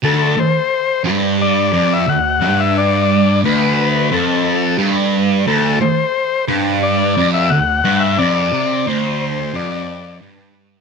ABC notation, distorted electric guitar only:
X:1
M:4/4
L:1/8
Q:1/4=88
K:Clyd
V:1 name="Distorted electric guitar" clef=bass
D,, z2 G,,2 =F,, D,, G,,- | G,,2 D,,2 =F,,2 G,,2 | D,, z2 G,,2 =F,, D,, G,, | =F,, C, D,,2 F,,2 G,,2 |]